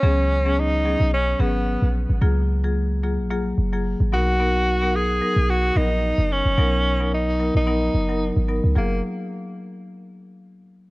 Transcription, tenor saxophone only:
X:1
M:4/4
L:1/16
Q:"Swing 16ths" 1/4=110
K:F#
V:1 name="Tenor saxophone"
C4 D4 C2 B,4 z2 | z12 z2 F2- | F4 G4 F2 D4 C2- | C4 D3 D6- D z2 |
A,2 z12 z2 |]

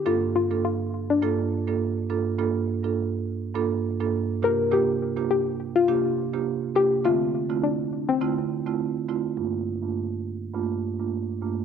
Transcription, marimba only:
X:1
M:4/4
L:1/16
Q:"Swing 16ths" 1/4=103
K:Gdor
V:1 name="Marimba"
[G,,B,DFA]3 [G,,B,DFA] z4 [G,,B,DFA]2 z [G,,B,DFA] z2 [G,,B,DFA]2 | [G,,B,DFA]3 [G,,B,DFA] z4 [G,,B,DFA]2 z [G,,B,DFA] z2 [C,B,DFG]2 | [C,B,DFG]3 [C,B,DFG] z4 [C,B,DFG]2 z [C,B,DFG] z2 [C,B,DFG]2 | [D,A,CFe]3 [D,A,CEF] z4 [D,A,CEF]2 z [D,A,CEF] z2 [D,A,CEF]2 |
[G,,A,B,DF]3 [G,,A,B,DF] z4 [G,,A,B,DF]2 z [G,,A,B,DF] z2 [G,,A,B,DF]2 |]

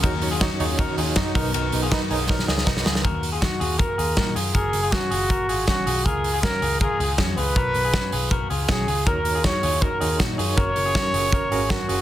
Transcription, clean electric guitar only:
X:1
M:4/4
L:1/16
Q:1/4=160
K:D#m
V:1 name="Clean electric guitar"
[FA]3 [EG] [DF]2 [EG]2 [FA]2 [EG]2 [DF]2 [FA]2 | [FA]3 [EG] [DF]2 [EG]2 [FA]2 [EG]2 [DF]2 [EG]2 | [FA]3 [EG] [DF]2 [EG]2 [FA]2 [EG]2 [DF]2 [EG]2 | [FA]3 [EG] [CF]2 [EG]2 [FA]2 [EG]2 [CF]2 [EG]2 |
[EA]3 [EG] [CF]2 [EG]2 [EA]2 [EG]2 [CF]2 [EG]2 | [FA]3 [EG] [CF]2 [EG]2 [FA]2 [EG]2 [CF]2 [EG]2 | [FA]3 [EG] [DF]2 [EG]2 [FA]2 [EG]2 [DF]2 [EG]2 | [FA]3 [EG] [CF]2 [EG]2 [FA]2 [EG]2 [CF]2 [EG]2 |]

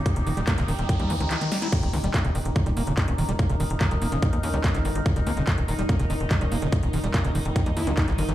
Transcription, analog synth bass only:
X:1
M:4/4
L:1/16
Q:1/4=144
K:Eb
V:1 name="Analog synth bass" clef=bass
z E,,, E,,, E,,, z E,,, E,,, E,,, z E,, E,, _D,, z4 | z E,,, _D,, E,,, z E,,, E,,, E,,, z E,,, E,,, E,,, z E,,, E,,, E,,, | z E,,, E,,, E,,, z E,,, E,,, E,,, z E,, E,, _D,, z G,,, G,,, G,,, | z E,,, _D,, E,,, z E,,, E,,, E,,, z E,,, E,,, E,,, z E,,, E,,, E,,, |
z E,,, E,,, E,,, z E,,, E,,, E,,, z E,, E,, _D,, z G,,, G,,, G,,, |]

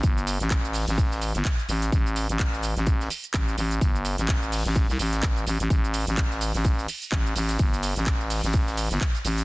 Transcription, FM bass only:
X:1
M:4/4
L:1/16
Q:"Swing 16ths" 1/4=127
K:Gdor
V:1 name="FM bass" clef=bass
G,,,3 A,,,4 A,,,4 G,,, z2 A,,,2 | A,,,3 A,,,4 A,,,3 z2 A,,,2 A,,,2 | G,,,3 A,,,4 A,,,2 C,, A,,,4 A,,, A,,, | A,,,3 A,,,4 A,,,3 z2 A,,,2 A,,,2 |
G,,,3 A,,,4 A,,,4 G,,, z2 A,,,2 |]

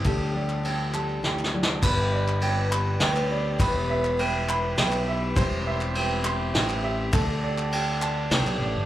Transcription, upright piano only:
X:1
M:3/4
L:1/8
Q:1/4=102
K:G
V:1 name="Upright piano"
A d g a g d | B d g b g d | B e g b g e | c e g c' g e |
A d g a g d |]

